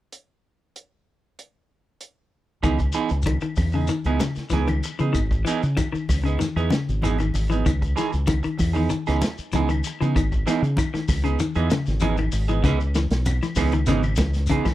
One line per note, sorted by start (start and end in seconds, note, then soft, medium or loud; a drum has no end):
0.12 closed hi-hat soft
0.76 closed hi-hat soft
1.39 closed hi-hat soft
2.01 closed hi-hat soft
2.63 2.91 C#2 medium
2.63 2.86 D#3 medium
2.63 2.79 E3 medium
2.63 2.79 B3 medium
2.63 2.79 D#4 medium
2.63 2.78 G#4 medium
2.63 kick medium
2.63 closed hi-hat soft
2.63 claves soft
2.63 shekere medium
2.79 muted clean electric guitar stroke soft
2.79 kick medium
2.79 closed hi-hat soft
2.79 shekere soft
2.92 3.11 E3 medium
2.92 3.11 B3 medium
2.92 3.11 D#4 medium
2.92 3.10 G#4 medium
2.92 closed hi-hat soft
2.92 shekere medium
3.09 3.39 C#2 medium
3.09 muted clean electric guitar stroke soft
3.09 closed hi-hat soft
3.09 shekere soft
3.22 3.38 D#3 medium
3.22 kick soft
3.22 closed hi-hat medium
3.22 shekere medium
3.27 high conga medium
3.27 claves medium
3.41 3.64 D#3 medium
3.41 muted clean electric guitar stroke soft
3.41 closed hi-hat soft
3.41 shekere soft
3.56 3.86 E2 medium
3.56 muted clean electric guitar stroke soft
3.56 kick medium
3.56 open hi-hat medium
3.56 high conga medium
3.56 claves medium
3.56 shekere medium
3.72 3.85 C#3 medium
3.72 3.90 D#4 soft
3.72 3.90 G#4 medium
3.72 shekere soft
3.76 3.90 B3 soft
3.87 4.11 D#3 medium
3.87 muted fingered electric bass stroke soft
3.87 muted clean electric guitar stroke soft
3.87 closed hi-hat medium
3.87 shekere medium
4.04 4.19 C#2 medium
4.04 4.20 E3 medium
4.04 4.20 B3 medium
4.04 4.20 D#4 medium
4.04 4.20 G#4 medium
4.04 closed hi-hat soft
4.04 claves soft
4.04 shekere soft
4.19 4.42 C#3 medium
4.19 muted clean electric guitar stroke soft
4.19 snare medium
4.19 closed hi-hat soft
4.19 high conga medium
4.19 shekere medium
4.35 muted fingered electric bass stroke soft
4.35 snare soft
4.35 closed hi-hat soft
4.35 shekere soft
4.50 4.80 C#2 medium
4.50 4.62 E3 medium
4.50 4.69 E3 medium
4.50 4.68 B3 medium
4.50 4.68 D#4 medium
4.50 4.68 G#4 medium
4.50 snare soft
4.50 closed hi-hat medium
4.50 high conga medium
4.50 shekere medium
4.67 4.90 D#3 medium
4.67 muted clean electric guitar stroke soft
4.67 closed hi-hat soft
4.67 high conga medium
4.67 claves medium
4.67 shekere soft
4.83 muted clean electric guitar stroke soft
4.83 closed hi-hat soft
4.83 shekere medium
4.99 5.13 C#3 medium
4.99 5.10 E3 medium
4.99 5.19 B3 soft
4.99 5.19 D#4 soft
4.99 5.18 G#4 soft
4.99 closed hi-hat soft
4.99 shekere soft
5.13 5.43 G#1 medium
5.13 5.36 D#3 medium
5.13 kick medium
5.13 closed hi-hat medium
5.13 claves medium
5.13 shekere medium
5.31 muted clean electric guitar stroke soft
5.31 kick medium
5.31 shekere soft
5.45 5.67 E3 medium
5.45 5.63 E3 medium
5.45 5.63 B3 medium
5.45 5.62 D#4 medium
5.45 5.62 G#4 medium
5.45 closed hi-hat soft
5.45 shekere medium
5.63 5.76 C#3 medium
5.63 muted clean electric guitar stroke soft
5.63 closed hi-hat soft
5.63 shekere soft
5.77 5.88 D#3 medium
5.77 kick medium
5.77 closed hi-hat medium
5.77 high conga medium
5.77 claves medium
5.77 shekere medium
5.92 6.15 D#3 medium
5.92 muted clean electric guitar stroke soft
5.92 muted fingered electric bass stroke soft
5.92 shekere soft
6.09 6.37 C#2 medium
6.09 muted clean electric guitar stroke soft
6.09 kick medium
6.09 open hi-hat medium
6.09 high conga medium
6.09 claves medium
6.09 shekere medium
6.24 6.35 C#3 medium
6.24 6.40 B3 soft
6.24 6.40 D#4 soft
6.24 6.40 G#4 soft
6.24 closed hi-hat soft
6.24 shekere soft
6.39 6.61 D#3 medium
6.39 muted clean electric guitar stroke soft
6.39 snare soft
6.39 closed hi-hat medium
6.39 high conga medium
6.39 shekere medium
6.56 6.70 E2 medium
6.56 6.71 B3 medium
6.56 6.71 D#4 medium
6.56 6.71 G#4 medium
6.56 closed hi-hat soft
6.56 claves medium
6.56 shekere soft
6.70 6.93 C#3 medium
6.70 muted clean electric guitar stroke soft
6.70 muted fingered electric bass stroke soft
6.70 snare medium
6.70 closed hi-hat soft
6.70 high conga medium
6.70 shekere medium
6.89 7.30 G#1 medium
6.89 closed hi-hat soft
6.89 shekere soft
7.02 7.19 E3 medium
7.02 7.15 E3 medium
7.02 7.19 B3 medium
7.02 7.18 D#4 medium
7.02 7.18 G#4 medium
7.02 closed hi-hat medium
7.02 high conga medium
7.02 shekere medium
7.18 7.42 D#3 medium
7.18 muted clean electric guitar stroke soft
7.18 closed hi-hat soft
7.18 high conga medium
7.18 claves medium
7.18 shekere soft
7.34 7.62 G#1 medium
7.34 muted clean electric guitar stroke soft
7.34 open hi-hat medium
7.34 high conga medium
7.34 shekere medium
7.50 7.61 E3 medium
7.50 7.70 B3 soft
7.50 7.70 D#4 soft
7.50 7.69 G#4 soft
7.50 closed hi-hat soft
7.50 shekere soft
7.66 7.94 C#2 medium
7.66 7.88 D#3 medium
7.66 kick medium
7.66 closed hi-hat medium
7.66 claves medium
7.66 shekere medium
7.81 muted clean electric guitar stroke soft
7.81 kick medium
7.81 closed hi-hat soft
7.81 shekere soft
7.96 8.12 E3 medium
7.96 8.20 E3 medium
7.96 8.11 D#4 medium
7.96 8.11 G#4 medium
7.96 muted clean electric guitar stroke medium
7.96 snare soft
7.96 closed hi-hat soft
7.96 shekere medium
8.12 8.41 C#2 medium
8.12 muted clean electric guitar stroke soft
8.12 closed hi-hat soft
8.12 shekere soft
8.27 8.39 D#3 medium
8.27 kick medium
8.27 closed hi-hat medium
8.27 high conga medium
8.27 claves medium
8.27 shekere medium
8.43 8.66 D#3 medium
8.43 muted clean electric guitar stroke soft
8.43 closed hi-hat soft
8.43 shekere soft
8.58 8.87 E2 medium
8.58 muted clean electric guitar stroke soft
8.58 kick medium
8.58 open hi-hat medium
8.58 high conga medium
8.58 claves medium
8.58 shekere medium
8.73 8.87 D#3 medium
8.73 8.90 B3 soft
8.73 8.90 D#4 medium
8.73 8.89 G#4 medium
8.73 shekere soft
8.90 9.12 D#3 medium
8.90 muted clean electric guitar stroke soft
8.90 muted fingered electric bass stroke soft
8.90 closed hi-hat medium
8.90 shekere medium
9.07 9.21 C#2 medium
9.07 9.21 E3 medium
9.07 9.21 B3 medium
9.07 9.22 D#4 medium
9.07 9.22 G#4 medium
9.07 snare soft
9.07 closed hi-hat soft
9.07 claves medium
9.07 shekere soft
9.21 muted clean electric guitar stroke soft
9.21 snare medium
9.21 closed hi-hat medium
9.21 high conga medium
9.21 shekere medium
9.38 muted fingered electric bass stroke soft
9.38 closed hi-hat soft
9.38 shekere soft
9.52 9.81 C#2 medium
9.52 9.64 E3 medium
9.52 9.70 E3 medium
9.52 9.70 B3 medium
9.52 9.70 D#4 medium
9.52 9.69 G#4 medium
9.52 closed hi-hat medium
9.52 high conga medium
9.52 shekere medium
9.69 9.91 D#3 medium
9.69 muted clean electric guitar stroke soft
9.69 closed hi-hat soft
9.69 claves medium
9.69 shekere soft
9.84 muted clean electric guitar stroke soft
9.84 closed hi-hat soft
9.84 shekere medium
10.01 10.15 C#3 medium
10.01 10.11 E3 medium
10.01 10.20 B3 soft
10.01 10.19 D#4 soft
10.01 10.19 G#4 soft
10.01 closed hi-hat soft
10.01 shekere soft
10.15 10.43 G#1 medium
10.15 10.38 D#3 medium
10.15 kick medium
10.15 closed hi-hat medium
10.15 claves medium
10.15 shekere medium
10.32 muted clean electric guitar stroke soft
10.32 kick medium
10.32 shekere soft
10.46 10.63 E3 medium
10.46 10.69 E3 medium
10.46 10.62 B3 medium
10.46 10.62 D#4 medium
10.46 10.62 G#4 medium
10.46 snare soft
10.46 closed hi-hat soft
10.46 shekere medium
10.62 10.76 C#3 medium
10.62 muted clean electric guitar stroke soft
10.62 closed hi-hat soft
10.62 shekere soft
10.77 10.89 D#3 medium
10.77 kick medium
10.77 closed hi-hat medium
10.77 high conga medium
10.77 claves medium
10.77 shekere medium
10.94 11.16 D#3 medium
10.94 muted fingered electric bass stroke soft
10.94 muted clean electric guitar stroke soft
10.94 snare soft
10.94 shekere soft
11.08 11.36 C#2 medium
11.08 muted clean electric guitar stroke soft
11.08 kick medium
11.08 open hi-hat medium
11.08 high conga medium
11.08 claves medium
11.08 shekere medium
11.24 11.35 C#3 medium
11.24 11.39 B3 soft
11.24 11.39 D#4 soft
11.24 11.39 G#4 soft
11.24 closed hi-hat soft
11.24 shekere soft
11.39 11.62 D#3 medium
11.39 muted clean electric guitar stroke soft
11.39 closed hi-hat medium
11.39 high conga medium
11.39 shekere medium
11.55 11.69 E2 medium
11.55 11.70 E3 medium
11.55 11.70 B3 medium
11.55 11.70 D#4 medium
11.55 11.70 G#4 medium
11.55 closed hi-hat soft
11.55 claves medium
11.55 shekere soft
11.70 11.93 C#3 medium
11.70 muted fingered electric bass stroke soft
11.70 muted clean electric guitar stroke soft
11.70 snare medium
11.70 closed hi-hat soft
11.70 high conga medium
11.70 shekere medium
11.86 12.29 G#1 medium
11.86 snare soft
11.86 closed hi-hat soft
11.86 shekere soft
12.00 12.18 E3 medium
12.00 12.13 E3 medium
12.00 12.17 B3 medium
12.00 12.17 D#4 medium
12.00 12.16 G#4 medium
12.00 closed hi-hat medium
12.00 high conga medium
12.00 shekere medium
12.17 12.40 D#3 medium
12.17 muted clean electric guitar stroke soft
12.17 closed hi-hat soft
12.17 high conga medium
12.17 claves medium
12.17 shekere soft
12.32 12.61 G#1 medium
12.32 muted clean electric guitar stroke soft
12.32 open hi-hat medium
12.32 shekere medium
12.48 12.60 E3 medium
12.48 12.64 B3 soft
12.48 12.63 D#4 soft
12.48 12.64 G#4 soft
12.48 closed hi-hat soft
12.48 shekere soft
12.64 13.06 C#2 medium
12.64 12.86 C#3 medium
12.64 12.80 E3 medium
12.64 12.80 B3 medium
12.64 12.79 D#4 medium
12.64 12.79 G#4 medium
12.64 kick medium
12.64 snare soft
12.64 closed hi-hat medium
12.64 low conga medium
12.64 claves medium
12.64 shekere medium
12.80 muted clean electric guitar stroke soft
12.80 shekere soft
12.94 13.18 E3 medium
12.94 muted clean electric guitar stroke soft
12.94 snare medium
12.94 closed hi-hat soft
12.94 shekere medium
13.10 13.39 B1 medium
13.10 snare medium
13.10 closed hi-hat soft
13.10 shekere soft
13.25 muted clean electric guitar stroke soft
13.25 closed hi-hat medium
13.25 high conga medium
13.25 claves medium
13.25 shekere medium
13.42 13.64 E3 medium
13.42 snare soft
13.42 shekere soft
13.56 13.85 C#2 medium
13.56 13.73 E3 medium
13.56 13.73 B3 medium
13.56 13.73 D#4 medium
13.56 13.73 G#4 medium
13.56 kick medium
13.56 snare soft
13.56 open hi-hat medium
13.56 high conga medium
13.56 claves medium
13.56 shekere medium
13.72 13.84 D#3 medium
13.72 muted clean electric guitar stroke soft
13.72 closed hi-hat medium
13.72 shekere soft
13.86 14.15 G#1 loud
13.86 14.10 C#3 medium
13.86 14.04 E3 medium
13.86 14.03 B3 medium
13.86 14.03 D#4 medium
13.86 14.02 G#4 medium
13.86 snare soft
13.86 closed hi-hat medium
13.86 low conga medium
13.86 shekere medium
14.03 muted clean electric guitar stroke soft
14.03 claves medium
14.03 shekere soft
14.16 14.47 C#2 medium
14.16 14.41 E3 medium
14.16 muted clean electric guitar stroke soft
14.16 kick medium
14.16 snare medium
14.16 closed hi-hat medium
14.16 high conga medium
14.16 shekere medium
14.33 snare soft
14.33 closed hi-hat medium
14.33 shekere soft
14.47 14.61 C#3 medium
14.47 14.66 E3 medium
14.47 14.66 B3 medium
14.47 kick medium
14.47 closed hi-hat medium
14.47 high conga medium
14.47 shekere medium
14.51 14.66 D#4 medium
14.51 14.66 G#4 medium
14.65 14.74 E3 medium
14.65 muted clean electric guitar stroke soft
14.65 kick medium
14.65 snare soft
14.65 high conga medium
14.65 claves medium
14.65 shekere soft